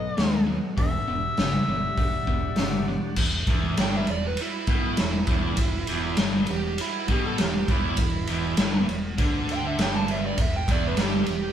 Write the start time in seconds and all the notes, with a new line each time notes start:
Already playing: B2 F#3 A3 D#4 F#4 D#5
0.17 D#2 B2 G#3, snare, open hi-hat
0.46 B2 F#3
0.76 E1 E2 B2 G3 D4 F#4 E5, kick, open hi-hat
1.07 E1 E2 B2
1.37 G1 E2 C#3, snare, open hi-hat
1.68 G1 E2 B2
1.97 E1 E2 B2, kick, open hi-hat
2.27 E1 E2 B2, kick
2.56 G1 E2 C#3, snare, open hi-hat
2.88 E2 B2
3.16 E1 E2, kick, crash
3.47 E1 E2, kick, ride
3.77 G1 G2 G5, snare, ride
3.97 E5
4.07 E1 E2 D5, ride
4.27 B4
4.37 ride
4.41 E4
4.67 B1 B2, kick, ride
4.97 E1 E2, snare, ride
5.27 E1 E2, kick, ride
5.57 E1 E2, kick, ride
5.87 E1 E2, ride
6.17 G1 G2, snare, ride
6.47 E1 E2, ride
6.51 G4
6.78 E4, ride
7.08 B1 B2 G4, kick, ride
7.27 A4
7.38 E1 E2 G4, snare, ride
7.68 E1 E2 E4, kick, ride
7.97 E1 E2, kick, ride
8.27 E1 E2, ride
8.57 G1 G2, snare, ride
8.88 E1 E2, ride
9.17 D2 D3, kick, ride
9.49 G5, ride
9.66 E5
9.78 G1 G2, snare, ride
9.82 G5
9.97 A5
10.08 E5, ride
10.26 D5
10.37 E1 E2 E5, kick, ride
10.56 G5
10.68 E1 E2 D5, kick, ride
10.88 B4
10.97 G1 G2, snare, ride
11.02 G4
11.26 E1 E2, ride